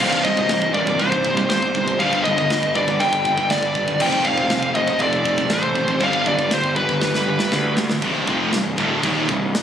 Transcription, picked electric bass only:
0.00 C1
0.25 C1
0.49 C1
0.75 C1
1.00 C1
1.50 G1
2.00 G1
2.26 G1
2.50 G1
2.76 G1
3.01 G1
3.50 G1
4.00 F1
4.25 F1
4.50 F1
4.75 F1
5.00 F1
5.50 A1
6.01 G1
6.26 G1
6.51 G1
6.76 G1
7.02 G1
7.52 D2
8.03 C1
8.28 F1
8.53 C1
8.78 D1
9.04 D#1
9.29 C1

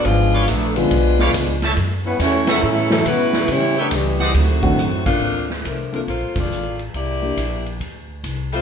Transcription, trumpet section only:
0.33 B4 C#5 D5 F5
1.20 B4 C#5 D5 F5
1.63 A4 C#5 E5 A5
2.48 A4 C#5 E5 F#5
3.76 B4 C#5 E5 G5
4.20 C5 D5 D#5 F#5

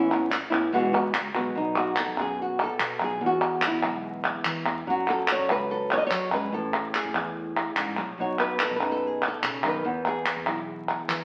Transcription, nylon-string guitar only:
Already playing: C#4
0.10 B3 C#4 E4
0.30 muted nylon-string guitar stroke
0.50 B3 C#4 E4
0.73 B2 E3 G#3 B3 F#4
0.93 G#3 B3 F#4
1.14 muted nylon-string guitar stroke
1.35 G#3 B3 F#4
1.55 B2 D#4
1.78 F#4
2.00 A4
2.21 G#4
2.42 F#4
2.63 A4
3.04 G#4
3.21 E2
3.26 F#4
3.67 E4
3.84 G#3 B3
4.87 F#3 F#4
5.10 A4
5.32 C#5
5.51 B4
5.71 A4
5.93 C#5
5.98 D#5
6.07 C#5
6.11 F#3
6.32 G#3 B4
6.53 A2 A4
6.95 G#4
7.78 G#2
7.98 A2
8.19 B2 D#4 F#4 C#5
8.40 B4
8.62 A4
8.76 B4
8.82 D#4
8.92 A4
9.07 G#4
9.28 A4
9.43 C#3
9.65 D#3 B4
9.85 E2 B3
10.08 G#4
10.48 E4

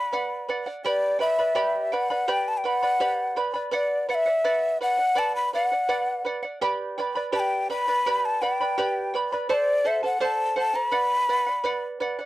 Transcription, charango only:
Already playing: D5 F#5
0.13 B4 D5 F#5
0.49 B4 D5 F#5
0.66 D5 F#5
0.85 G4 B4 D5 G5 B5
1.19 B4 D5 G5 B5
1.39 B4 D5 B5
1.55 G4 B4 D5 G5 B5
1.92 B4 D5 G5 B5
2.10 B4 D5 B5
2.28 G4 B4 D5 G5 B5
2.64 B4 D5 G5 B5
2.83 B4 D5 B5
3.00 G4 B4 D5 B5
3.36 B4 D5 G5 B5
3.54 B4 D5 B5
3.71 B4 D5 F#5
4.09 B4 D5 F#5
4.26 D5 F#5
4.44 B4 D5 F#5
4.81 B4 D5 F#5
4.98 D5 F#5
5.15 B4 D5 F#5
5.53 B4 D5 F#5
5.72 D5 F#5
5.89 B4 D5 F#5
6.25 B4 D5 F#5
6.43 D5 F#5
6.61 G4 B4 D5 G5 B5
6.98 B4 D5 G5 B5
7.15 B4 D5 B5
7.32 G4 B4 D5 G5 B5
7.70 B4 D5 G5 B5
7.88 B4 D5 B5
8.06 G4 B4 D5 G5 B5
8.42 B4 D5 G5 B5
8.61 B4 D5 B5
8.78 G4 B4 D5 G5 B5
9.14 B4 D5 G5 B5
9.32 B4 D5 B5
9.49 A4 C5 D5 F#5 A5
9.85 A4 C5 F#5 A5
10.03 A4 C5 A5
10.20 A4 C5 D5 F#5 A5
10.56 A4 C5 F#5 A5
10.74 A4 C5 A5
10.91 B4 D5 F#5
11.29 B4 D5 F#5
11.46 D5 F#5
11.64 B4 D5 F#5
12.00 B4 D5 F#5
12.19 D5 F#5

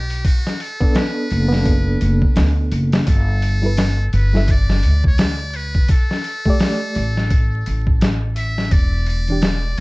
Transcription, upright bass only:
Already playing: B1
1.32 F#1
2.02 F#1
2.37 D2
2.72 F#1
3.07 G1
4.14 G1
4.85 D2
6.96 A1
7.67 A1
8.72 E1

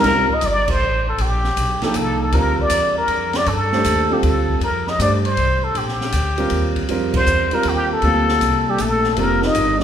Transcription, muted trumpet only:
Already playing: A#4
0.34 D#5
0.46 D5
0.70 C5
1.08 A4
1.21 G4
1.85 G4
1.96 A4
2.22 A4
2.34 A#4
2.61 D5
2.98 A#4
3.37 D5
3.48 A4
4.13 G4
4.19 G4
4.24 A4
4.63 A#4
4.89 D#5
5.02 D5
5.25 C5
5.64 A4
5.77 G4
7.16 C5
7.54 A#4
7.69 G4
7.93 A4
8.70 G4
8.81 A4
9.20 A#4
9.46 D#5

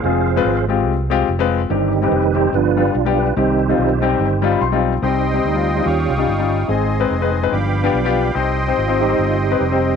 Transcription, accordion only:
5.02 D#5 G5 C6 D#6
5.86 F5 C#6
6.69 D#5 G#5 C6
7.52 F5 G5 B5 D6
8.35 D#5 C6 D#6

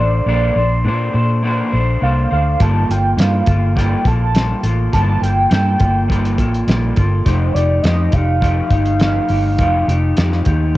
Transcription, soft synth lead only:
0.00 D5
2.02 F5
2.32 F5
2.62 A5
2.91 G5
3.19 F5
3.77 G5
4.07 A5
4.93 A5
5.22 G5
7.25 C5
7.54 D5
7.83 D#5
8.13 F5

